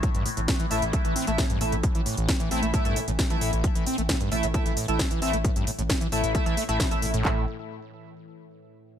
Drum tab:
HH |xxoxxxoxxxoxxxox|xxoxxxoxxxoxxxox|xxoxxxoxxxoxxxox|xxoxxxoxxxoxxxox|
CP |----------------|----------------|----------------|----------------|
SD |----o-------o---|----o-------o---|----o-------o---|----o-------o---|
BD |o---o---o---o---|o---o---o---o---|o---o---o---o---|o---o---o---o---|

HH |----------------|
CP |x---------------|
SD |----------------|
BD |o---------------|